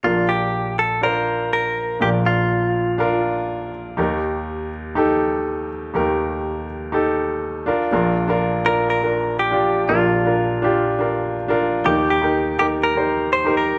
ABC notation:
X:1
M:4/4
L:1/16
Q:1/4=122
K:Bb
V:1 name="Clean electric guitar"
F2 G4 A2 B4 B4 | G2 F8 z6 | z16 | z16 |
z6 B2 B4 G4 | F8 z8 | G2 G4 G2 B4 c2 B2 |]
V:2 name="Grand piano"
[DFB]6 z2 [DFc]6 z2 | [DFB]6 z2 [DFB]6 z2 | [EGB]6 z2 [EGA]6 z2 | [EGB]6 z2 [EGA]6 [DFB]2 |
[DFB]2 z [DFB]2 z [DFB]2 z [DFB]3 z [DFG]2 z | [DFB]2 z [DFB]2 z [DFG]2 z [DFB]3 z [DFB]2 z | [EGB]2 z [EGB]2 z [EGB]2 z [EGc]3 z [EGB]2 z |]
V:3 name="Grand piano" clef=bass
[B,,,B,,]16 | [B,,,B,,]16 | [E,,E,]16 | [E,,E,]12- [E,,E,]2 z2 |
[B,,,B,,]16 | [B,,,B,,]16 | [E,,E,]16 |]